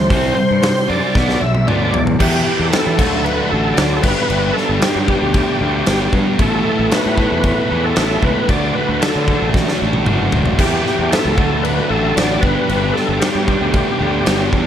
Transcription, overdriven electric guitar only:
0.11 0.35 C3 medium
0.11 0.36 G3 loud
0.11 0.36 C4 loud
0.36 0.60 C3 medium
0.36 0.60 G3 medium
0.62 0.86 C3 medium
0.62 0.86 G3 medium
0.88 1.13 C3 medium
0.88 1.14 G3 medium
0.88 1.14 C4 loud
1.15 1.40 B2 loud
1.15 1.40 F#3 loud
1.15 1.40 B3 loud
1.41 1.65 B2 medium
1.41 1.65 F#3 medium
1.67 1.92 B2 medium
1.67 1.93 F#3 loud
1.67 1.93 B3 medium
1.94 2.18 B2 medium
1.94 2.18 F#3 medium
2.19 2.70 E3 medium
2.19 2.47 B3 loud
2.19 2.46 E4 loud
2.19 2.44 G4 loud
2.45 2.72 B3 medium
2.45 2.72 E4 medium
2.45 2.74 G4 medium
2.72 2.97 E3 medium
2.72 2.97 B3 medium
2.72 2.98 E4 medium
2.72 2.98 G4 medium
2.98 3.76 D3 medium
2.98 3.77 F#3 medium
2.98 3.53 A3 medium
2.98 3.51 D4 medium
2.98 3.49 F#4 loud
3.51 3.78 A3 medium
3.51 3.78 D4 medium
3.51 3.79 F#4 medium
3.77 4.02 D3 loud
3.77 4.02 F#3 medium
3.77 4.03 A3 medium
3.77 4.03 D4 medium
3.77 4.03 F#4 loud
4.03 4.28 G3 medium
4.03 4.29 B3 medium
4.03 4.30 D4 medium
4.03 4.30 G4 medium
4.29 4.79 G3 medium
4.29 4.57 B3 loud
4.29 4.55 D4 loud
4.29 4.53 G4 loud
4.54 4.81 B3 medium
4.54 4.81 D4 medium
4.54 4.82 G4 medium
4.80 5.33 G3 medium
4.80 5.10 B3 medium
4.80 5.08 D4 medium
4.80 5.06 G4 medium
5.07 5.61 B3 medium
5.07 5.60 D4 medium
5.07 5.58 G4 medium
5.59 5.84 B3 medium
5.59 5.86 D4 medium
5.59 5.86 G4 medium
5.85 6.37 G3 medium
5.85 6.37 B3 loud
5.85 6.38 D4 loud
5.85 6.38 G4 loud
6.38 6.90 A3 loud
6.38 6.67 B3 loud
6.38 6.67 E4 medium
6.38 6.65 A4 loud
6.65 6.91 B3 medium
6.65 6.93 E4 medium
6.65 6.94 A4 medium
6.91 7.76 A3 medium
6.91 7.20 B3 medium
6.91 7.19 E4 medium
6.91 7.17 A4 medium
7.18 7.72 B3 medium
7.18 7.71 E4 medium
7.18 7.68 A4 medium
7.70 7.96 B3 medium
7.70 7.97 E4 medium
7.70 7.98 A4 medium
7.96 8.47 A3 medium
7.96 8.48 B3 loud
7.96 8.51 E4 loud
7.96 8.49 A4 loud
8.49 9.02 D3 medium
8.49 9.00 F#3 medium
8.49 8.78 A3 loud
8.49 8.76 D4 loud
8.49 8.74 F#4 loud
8.75 9.01 A3 medium
8.75 9.02 D4 medium
8.75 9.03 F#4 medium
9.01 9.54 F#3 medium
9.01 9.29 A3 medium
9.01 9.28 D4 medium
9.01 9.26 F#4 medium
9.27 9.81 A3 medium
9.27 9.80 D4 medium
9.27 9.78 F#4 medium
9.79 10.06 A3 medium
9.79 10.07 D4 medium
9.79 10.07 F#4 medium
10.05 10.57 D3 medium
10.05 10.57 F#3 medium
10.05 10.58 A3 medium
10.05 10.58 D4 medium
10.05 10.58 F#4 loud
10.57 11.09 E3 medium
10.57 10.86 B3 medium
10.57 10.85 E4 medium
10.57 10.83 G4 medium
10.84 11.10 B3 medium
10.84 11.11 E4 medium
10.84 11.13 G4 medium
11.10 11.36 E3 medium
11.10 11.36 B3 medium
11.10 11.37 E4 medium
11.10 11.36 G4 medium
11.36 12.14 D3 medium
11.36 12.15 F#3 medium
11.36 11.91 A3 medium
11.36 11.90 D4 medium
11.36 11.88 F#4 medium
11.89 12.16 A3 medium
11.89 12.17 D4 medium
11.89 12.18 F#4 medium
12.15 12.40 D3 medium
12.15 12.41 F#3 loud
12.15 12.42 A3 medium
12.15 12.42 D4 medium
12.15 12.41 F#4 loud
12.42 12.67 G3 medium
12.42 12.69 B3 medium
12.42 12.69 D4 medium
12.42 12.71 G4 medium
12.68 13.20 G3 medium
12.68 12.97 B3 medium
12.68 12.95 D4 medium
12.68 12.93 G4 loud
12.95 13.21 B3 medium
12.95 13.22 D4 medium
12.95 13.23 G4 medium
13.21 13.74 G3 medium
13.21 13.50 B3 medium
13.21 13.47 D4 medium
13.21 13.46 G4 medium
13.47 14.02 B3 medium
13.47 14.00 D4 medium
13.47 13.98 G4 medium
13.99 14.25 B3 medium
13.99 14.26 D4 medium
13.99 14.27 G4 medium
14.25 14.67 G3 loud
14.25 14.67 B3 loud
14.25 14.67 D4 loud
14.25 14.67 G4 loud

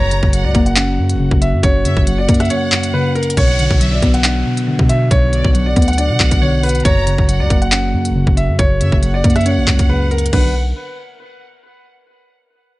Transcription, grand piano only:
0.00 0.41 C#5 loud
0.44 0.62 D5 medium
0.66 0.74 F#5 medium
0.76 1.38 F#5 medium
1.42 1.59 E5 medium
1.63 2.15 C#5 loud
2.18 2.36 D5 medium
2.40 2.48 E5 medium
2.50 2.91 C#5 medium
2.94 3.11 B4 medium
3.15 3.33 A#4 medium
3.37 3.89 C#5 loud
3.92 4.10 D5 medium
4.14 4.22 F#5 medium
4.24 4.85 F#5 medium
4.89 5.07 E5 medium
5.11 5.63 C#5 loud
5.66 5.84 D5 medium
5.88 5.96 F#5 medium
5.98 6.39 D5 medium
6.42 6.59 C#5 medium
6.63 6.81 B4 medium
6.85 7.37 C#5 loud
7.40 7.58 D5 medium
7.62 7.70 F#5 medium
7.72 8.33 F#5 medium
8.37 8.55 E5 medium
8.59 9.11 C#5 loud
9.14 9.32 D5 medium
9.36 9.44 E5 medium
9.46 9.87 C#5 medium
9.89 10.07 B4 medium
10.11 10.29 A#4 medium
10.33 10.53 B4 medium

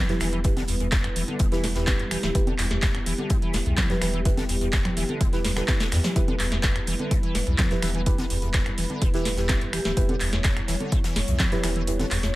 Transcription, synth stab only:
0.09 0.19 E4 medium
0.09 0.19 G4 medium
0.09 0.19 B4 loud
0.21 0.34 E4 medium
0.21 0.34 G4 medium
0.21 0.34 B4 loud
0.45 0.53 E4 medium
0.45 0.53 G4 medium
0.45 0.53 B4 medium
1.52 1.64 E4 loud
1.52 1.64 G4 medium
1.52 1.64 B4 loud
1.76 2.32 E4 loud
1.76 2.32 G4 medium
1.76 2.32 B4 loud
2.35 2.43 E4 medium
2.35 2.43 G4 medium
2.35 2.43 B4 loud
3.90 4.00 E4 loud
3.90 4.00 G4 medium
3.90 4.00 B4 loud
4.02 4.14 E4 medium
4.02 4.14 G4 medium
4.02 4.14 B4 loud
4.26 4.34 E4 medium
4.26 4.33 G4 medium
4.26 4.34 B4 medium
5.33 5.45 E4 medium
5.33 5.45 G4 medium
5.33 5.45 B4 loud
5.57 5.64 E4 medium
5.57 5.64 G4 medium
5.57 5.64 B4 medium
6.16 6.24 E4 medium
6.16 6.24 G4 medium
6.16 6.24 B4 loud
7.71 7.81 E4 loud
7.71 7.81 G4 medium
7.71 7.81 B4 loud
7.83 7.95 E4 medium
7.83 7.95 G4 medium
7.83 7.95 B4 loud
8.06 8.14 E4 medium
8.06 8.14 G4 medium
8.06 8.14 B4 medium
9.14 9.26 E4 medium
9.14 9.26 G4 medium
9.14 9.26 B4 loud
9.38 9.94 E4 medium
9.38 9.94 G4 medium
9.38 9.94 B4 loud
9.97 10.05 E4 loud
9.97 10.05 G4 medium
9.97 10.05 B4 loud
11.52 11.62 E4 loud
11.52 11.62 G4 medium
11.52 11.62 B4 loud
11.64 11.76 E4 medium
11.64 11.76 G4 medium
11.64 11.76 B4 loud
11.87 11.95 E4 medium
11.87 11.95 G4 medium
11.87 11.95 B4 medium

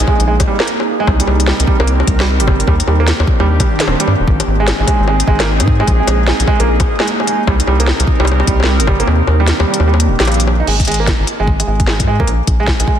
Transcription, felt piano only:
0.07 0.19 G#3 medium
0.28 0.32 G#3 medium
0.47 0.55 G3 medium
0.60 0.67 A#3 loud
1.00 1.05 G#3 loud
1.20 1.25 G3 medium
1.27 1.39 G3 medium
1.47 1.52 G3 medium
1.68 1.76 G3 medium
1.80 1.87 A#3 loud
2.20 2.25 G3 loud
2.40 2.45 G3 medium
2.48 2.59 G3 medium
2.68 2.72 G3 medium
2.88 2.96 G3 medium
3.00 3.07 A#3 loud
3.40 3.45 G3 loud
3.60 3.65 G3 medium
3.80 3.87 D#3 medium
3.88 3.92 C4 medium
4.00 4.07 G3 loud
4.60 4.65 G#3 loud
4.80 4.85 G#3 medium
4.87 4.99 G#3 medium
5.08 5.12 G#3 medium
5.28 5.36 G#3 loud
5.40 5.47 A#3 loud
5.80 5.85 G#3 loud
6.00 6.05 G#3 medium
6.08 6.19 G#3 medium
6.28 6.32 G#3 medium
6.48 6.56 G#3 loud
6.60 6.67 A#3 loud
7.00 7.05 G#3 loud
7.20 7.25 G#3 medium
7.27 7.39 G#3 medium
7.47 7.52 G3 medium
7.67 7.75 G3 loud
7.80 7.87 A#3 loud
8.20 8.25 G3 loud
8.40 8.45 G3 medium
8.47 8.59 G3 medium
8.67 8.72 G3 medium
8.87 8.95 G3 loud
9.00 9.07 A#3 loud
9.40 9.45 G3 loud
9.60 9.65 G3 medium
9.68 9.79 G3 medium
9.88 9.92 G3 medium
10.20 10.27 G4 loud
10.28 10.36 G2 medium
10.60 10.65 D#4 medium
10.68 10.72 G#3 medium
10.88 10.96 G#3 medium
11.00 11.07 A#3 loud
11.40 11.45 G#3 loud
11.60 11.65 G#3 medium
11.68 11.79 G#3 medium
11.88 11.92 G#3 medium
12.08 12.16 G#3 loud
12.20 12.27 A#3 loud
12.60 12.65 G#3 loud
12.80 12.85 G#3 medium
12.88 12.99 G#3 medium

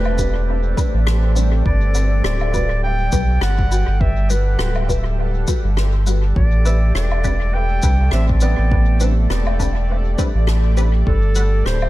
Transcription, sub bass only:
0.00 0.75 E1 medium
0.94 1.63 A1 loud
1.66 2.22 G1 loud
2.24 3.10 D1 medium
3.13 3.39 B1 medium
3.42 3.85 G1 medium
3.88 4.57 G1 medium
4.59 5.45 D1 medium
5.64 6.33 G1 loud
6.36 6.92 A1 loud
6.95 7.81 E1 medium
7.83 8.09 C2 medium
8.13 8.55 A1 medium
8.58 9.28 A1 medium
9.30 10.16 E1 medium
10.35 11.04 A1 loud
11.07 11.63 G1 loud
11.65 11.89 D1 medium

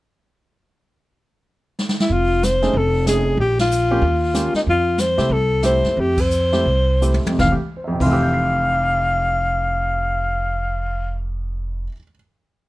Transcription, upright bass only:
2.10 2.71 F1 medium
2.73 3.34 F1 medium
3.37 3.98 A#1 medium
4.02 4.50 D#2 medium
4.54 muted upright bass stroke soft
4.67 5.15 F2 medium
5.18 5.29 C3 medium
5.30 5.80 C2 medium
5.84 5.95 F#2 medium
5.97 6.62 F2 medium
6.65 7.21 C2 medium
7.24 muted upright bass stroke soft
7.39 7.52 F1 medium
8.00 11.86 F1 medium

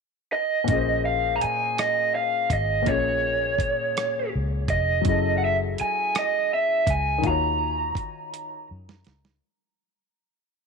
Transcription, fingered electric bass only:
0.69 1.38 A#1 medium
1.44 muted fingered electric bass stroke soft
2.51 2.88 G#1 medium
2.88 3.56 A#1 medium
3.60 muted fingered electric bass stroke soft
4.35 4.67 C#2 medium
4.70 5.02 F1 medium
5.06 5.74 F#1 medium
5.81 muted fingered electric bass stroke soft
6.88 7.20 C#2 medium
7.25 7.93 D#2 loud
7.96 muted fingered electric bass stroke soft
8.71 9.03 F#2 medium
9.07 9.39 C#2 medium

